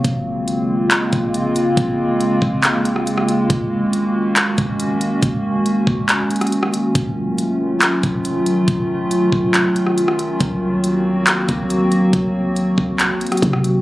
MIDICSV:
0, 0, Header, 1, 4, 480
1, 0, Start_track
1, 0, Key_signature, -5, "minor"
1, 0, Tempo, 431655
1, 51, Time_signature, 4, 2, 24, 8
1, 15363, End_track
2, 0, Start_track
2, 0, Title_t, "Ambient pad"
2, 0, Program_c, 0, 92
2, 52, Note_on_c, 0, 49, 79
2, 52, Note_on_c, 0, 58, 73
2, 52, Note_on_c, 0, 60, 74
2, 52, Note_on_c, 0, 65, 86
2, 53, Note_on_c, 0, 56, 73
2, 3853, Note_off_c, 0, 49, 0
2, 3853, Note_off_c, 0, 58, 0
2, 3853, Note_off_c, 0, 60, 0
2, 3853, Note_off_c, 0, 65, 0
2, 3890, Note_on_c, 0, 51, 76
2, 3891, Note_on_c, 0, 58, 69
2, 3891, Note_on_c, 0, 61, 72
2, 3891, Note_on_c, 0, 66, 85
2, 7687, Note_off_c, 0, 56, 0
2, 7692, Note_off_c, 0, 58, 0
2, 7692, Note_off_c, 0, 66, 0
2, 7732, Note_on_c, 0, 54, 75
2, 7733, Note_on_c, 0, 57, 71
2, 7733, Note_on_c, 0, 65, 90
2, 11526, Note_off_c, 0, 61, 0
2, 11533, Note_off_c, 0, 54, 0
2, 11533, Note_off_c, 0, 57, 0
2, 11533, Note_off_c, 0, 65, 0
2, 11571, Note_on_c, 0, 60, 70
2, 11571, Note_on_c, 0, 66, 87
2, 11572, Note_on_c, 0, 54, 75
2, 11572, Note_on_c, 0, 58, 71
2, 15363, Note_off_c, 0, 51, 0
2, 15363, Note_off_c, 0, 54, 0
2, 15363, Note_off_c, 0, 58, 0
2, 15363, Note_off_c, 0, 60, 0
2, 15363, Note_off_c, 0, 66, 0
2, 15363, End_track
3, 0, Start_track
3, 0, Title_t, "808-style bass"
3, 0, Program_c, 1, 38
3, 50, Note_on_c, 1, 34, 111
3, 1206, Note_off_c, 1, 34, 0
3, 1254, Note_on_c, 1, 34, 105
3, 1944, Note_off_c, 1, 34, 0
3, 1971, Note_on_c, 1, 34, 114
3, 2662, Note_off_c, 1, 34, 0
3, 2690, Note_on_c, 1, 34, 110
3, 3846, Note_off_c, 1, 34, 0
3, 3891, Note_on_c, 1, 32, 116
3, 5047, Note_off_c, 1, 32, 0
3, 5094, Note_on_c, 1, 32, 105
3, 5784, Note_off_c, 1, 32, 0
3, 5811, Note_on_c, 1, 32, 109
3, 6502, Note_off_c, 1, 32, 0
3, 6529, Note_on_c, 1, 32, 113
3, 6770, Note_off_c, 1, 32, 0
3, 7731, Note_on_c, 1, 29, 113
3, 8886, Note_off_c, 1, 29, 0
3, 8935, Note_on_c, 1, 29, 103
3, 9624, Note_off_c, 1, 29, 0
3, 9651, Note_on_c, 1, 29, 111
3, 10342, Note_off_c, 1, 29, 0
3, 10369, Note_on_c, 1, 29, 108
3, 11526, Note_off_c, 1, 29, 0
3, 11571, Note_on_c, 1, 36, 108
3, 12726, Note_off_c, 1, 36, 0
3, 12775, Note_on_c, 1, 36, 104
3, 13464, Note_off_c, 1, 36, 0
3, 13491, Note_on_c, 1, 36, 108
3, 14182, Note_off_c, 1, 36, 0
3, 14209, Note_on_c, 1, 36, 115
3, 14570, Note_on_c, 1, 34, 97
3, 14587, Note_off_c, 1, 36, 0
3, 14685, Note_off_c, 1, 34, 0
3, 14928, Note_on_c, 1, 48, 111
3, 15363, Note_off_c, 1, 48, 0
3, 15363, End_track
4, 0, Start_track
4, 0, Title_t, "Drums"
4, 50, Note_on_c, 9, 36, 121
4, 50, Note_on_c, 9, 42, 81
4, 161, Note_off_c, 9, 36, 0
4, 161, Note_off_c, 9, 42, 0
4, 530, Note_on_c, 9, 42, 80
4, 642, Note_off_c, 9, 42, 0
4, 1010, Note_on_c, 9, 42, 95
4, 1011, Note_on_c, 9, 39, 127
4, 1121, Note_off_c, 9, 42, 0
4, 1122, Note_off_c, 9, 39, 0
4, 1252, Note_on_c, 9, 42, 72
4, 1254, Note_on_c, 9, 36, 92
4, 1363, Note_off_c, 9, 42, 0
4, 1365, Note_off_c, 9, 36, 0
4, 1494, Note_on_c, 9, 42, 74
4, 1605, Note_off_c, 9, 42, 0
4, 1732, Note_on_c, 9, 42, 75
4, 1843, Note_off_c, 9, 42, 0
4, 1971, Note_on_c, 9, 36, 116
4, 1971, Note_on_c, 9, 42, 75
4, 2082, Note_off_c, 9, 36, 0
4, 2082, Note_off_c, 9, 42, 0
4, 2452, Note_on_c, 9, 42, 78
4, 2564, Note_off_c, 9, 42, 0
4, 2689, Note_on_c, 9, 36, 92
4, 2800, Note_off_c, 9, 36, 0
4, 2931, Note_on_c, 9, 39, 127
4, 2931, Note_on_c, 9, 42, 93
4, 3042, Note_off_c, 9, 42, 0
4, 3043, Note_off_c, 9, 39, 0
4, 3173, Note_on_c, 9, 42, 72
4, 3284, Note_off_c, 9, 42, 0
4, 3291, Note_on_c, 9, 37, 86
4, 3402, Note_off_c, 9, 37, 0
4, 3415, Note_on_c, 9, 42, 78
4, 3526, Note_off_c, 9, 42, 0
4, 3531, Note_on_c, 9, 37, 95
4, 3642, Note_off_c, 9, 37, 0
4, 3653, Note_on_c, 9, 42, 78
4, 3764, Note_off_c, 9, 42, 0
4, 3891, Note_on_c, 9, 36, 116
4, 3892, Note_on_c, 9, 42, 83
4, 4003, Note_off_c, 9, 36, 0
4, 4003, Note_off_c, 9, 42, 0
4, 4373, Note_on_c, 9, 42, 83
4, 4484, Note_off_c, 9, 42, 0
4, 4851, Note_on_c, 9, 39, 127
4, 4851, Note_on_c, 9, 42, 89
4, 4962, Note_off_c, 9, 39, 0
4, 4962, Note_off_c, 9, 42, 0
4, 5093, Note_on_c, 9, 42, 72
4, 5094, Note_on_c, 9, 36, 92
4, 5204, Note_off_c, 9, 42, 0
4, 5206, Note_off_c, 9, 36, 0
4, 5333, Note_on_c, 9, 42, 77
4, 5444, Note_off_c, 9, 42, 0
4, 5571, Note_on_c, 9, 42, 78
4, 5682, Note_off_c, 9, 42, 0
4, 5811, Note_on_c, 9, 36, 113
4, 5811, Note_on_c, 9, 42, 78
4, 5922, Note_off_c, 9, 36, 0
4, 5922, Note_off_c, 9, 42, 0
4, 6291, Note_on_c, 9, 42, 76
4, 6402, Note_off_c, 9, 42, 0
4, 6529, Note_on_c, 9, 36, 93
4, 6640, Note_off_c, 9, 36, 0
4, 6771, Note_on_c, 9, 39, 127
4, 6771, Note_on_c, 9, 42, 94
4, 6882, Note_off_c, 9, 39, 0
4, 6882, Note_off_c, 9, 42, 0
4, 7011, Note_on_c, 9, 42, 60
4, 7071, Note_off_c, 9, 42, 0
4, 7071, Note_on_c, 9, 42, 62
4, 7131, Note_off_c, 9, 42, 0
4, 7131, Note_on_c, 9, 37, 89
4, 7131, Note_on_c, 9, 42, 61
4, 7192, Note_off_c, 9, 42, 0
4, 7192, Note_on_c, 9, 42, 60
4, 7242, Note_off_c, 9, 37, 0
4, 7254, Note_off_c, 9, 42, 0
4, 7254, Note_on_c, 9, 42, 75
4, 7366, Note_off_c, 9, 42, 0
4, 7369, Note_on_c, 9, 37, 99
4, 7480, Note_off_c, 9, 37, 0
4, 7491, Note_on_c, 9, 42, 80
4, 7602, Note_off_c, 9, 42, 0
4, 7730, Note_on_c, 9, 42, 78
4, 7731, Note_on_c, 9, 36, 118
4, 7841, Note_off_c, 9, 42, 0
4, 7842, Note_off_c, 9, 36, 0
4, 8211, Note_on_c, 9, 42, 79
4, 8323, Note_off_c, 9, 42, 0
4, 8691, Note_on_c, 9, 42, 91
4, 8692, Note_on_c, 9, 39, 127
4, 8803, Note_off_c, 9, 39, 0
4, 8803, Note_off_c, 9, 42, 0
4, 8933, Note_on_c, 9, 42, 72
4, 8935, Note_on_c, 9, 36, 92
4, 9044, Note_off_c, 9, 42, 0
4, 9046, Note_off_c, 9, 36, 0
4, 9173, Note_on_c, 9, 42, 77
4, 9285, Note_off_c, 9, 42, 0
4, 9411, Note_on_c, 9, 42, 81
4, 9523, Note_off_c, 9, 42, 0
4, 9650, Note_on_c, 9, 42, 77
4, 9651, Note_on_c, 9, 36, 117
4, 9761, Note_off_c, 9, 42, 0
4, 9762, Note_off_c, 9, 36, 0
4, 10131, Note_on_c, 9, 42, 76
4, 10242, Note_off_c, 9, 42, 0
4, 10369, Note_on_c, 9, 36, 93
4, 10480, Note_off_c, 9, 36, 0
4, 10610, Note_on_c, 9, 42, 91
4, 10611, Note_on_c, 9, 39, 126
4, 10722, Note_off_c, 9, 39, 0
4, 10722, Note_off_c, 9, 42, 0
4, 10853, Note_on_c, 9, 42, 69
4, 10964, Note_off_c, 9, 42, 0
4, 10970, Note_on_c, 9, 37, 91
4, 11081, Note_off_c, 9, 37, 0
4, 11094, Note_on_c, 9, 42, 80
4, 11205, Note_off_c, 9, 42, 0
4, 11209, Note_on_c, 9, 37, 100
4, 11320, Note_off_c, 9, 37, 0
4, 11332, Note_on_c, 9, 42, 75
4, 11443, Note_off_c, 9, 42, 0
4, 11570, Note_on_c, 9, 42, 80
4, 11571, Note_on_c, 9, 36, 113
4, 11681, Note_off_c, 9, 42, 0
4, 11682, Note_off_c, 9, 36, 0
4, 12051, Note_on_c, 9, 42, 78
4, 12162, Note_off_c, 9, 42, 0
4, 12530, Note_on_c, 9, 42, 94
4, 12531, Note_on_c, 9, 39, 127
4, 12642, Note_off_c, 9, 39, 0
4, 12642, Note_off_c, 9, 42, 0
4, 12772, Note_on_c, 9, 42, 73
4, 12774, Note_on_c, 9, 36, 94
4, 12883, Note_off_c, 9, 42, 0
4, 12886, Note_off_c, 9, 36, 0
4, 13013, Note_on_c, 9, 42, 77
4, 13125, Note_off_c, 9, 42, 0
4, 13251, Note_on_c, 9, 42, 79
4, 13363, Note_off_c, 9, 42, 0
4, 13490, Note_on_c, 9, 42, 79
4, 13491, Note_on_c, 9, 36, 118
4, 13602, Note_off_c, 9, 36, 0
4, 13602, Note_off_c, 9, 42, 0
4, 13971, Note_on_c, 9, 42, 78
4, 14082, Note_off_c, 9, 42, 0
4, 14209, Note_on_c, 9, 36, 91
4, 14320, Note_off_c, 9, 36, 0
4, 14450, Note_on_c, 9, 42, 93
4, 14451, Note_on_c, 9, 39, 127
4, 14562, Note_off_c, 9, 39, 0
4, 14562, Note_off_c, 9, 42, 0
4, 14691, Note_on_c, 9, 42, 61
4, 14751, Note_off_c, 9, 42, 0
4, 14751, Note_on_c, 9, 42, 63
4, 14810, Note_off_c, 9, 42, 0
4, 14810, Note_on_c, 9, 37, 88
4, 14810, Note_on_c, 9, 42, 62
4, 14871, Note_off_c, 9, 42, 0
4, 14871, Note_on_c, 9, 42, 61
4, 14921, Note_off_c, 9, 37, 0
4, 14928, Note_on_c, 9, 36, 94
4, 14932, Note_off_c, 9, 42, 0
4, 14932, Note_on_c, 9, 42, 74
4, 15039, Note_off_c, 9, 36, 0
4, 15044, Note_off_c, 9, 42, 0
4, 15048, Note_on_c, 9, 37, 95
4, 15160, Note_off_c, 9, 37, 0
4, 15171, Note_on_c, 9, 42, 77
4, 15283, Note_off_c, 9, 42, 0
4, 15363, End_track
0, 0, End_of_file